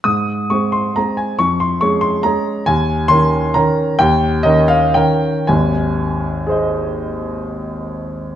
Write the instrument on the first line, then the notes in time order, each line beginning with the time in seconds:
grand piano
0.04 G#2 D#6
0.50 G#3 C4 G#4 C#6
0.72 C6
0.96 G#3 C4 G#4 A#5
1.17 G#5
1.39 F2 C#6
1.60 C6
1.81 G#3 C#4 G#4 C#6
2.01 C6
2.23 G#3 C#4 G#4 A#5
2.66 D#2 G#5
3.08 D#3 C#4 A#4 C6
3.54 D#3 C#4 A#4 A#5
3.99 D#2 G5
4.43 D#3 C#4 A#4 D#5
4.68 F5
4.94 D#3 C#4 A#4 G5
5.47 G#1 D#2 G#5
6.47 G#4 C5
6.51 D#5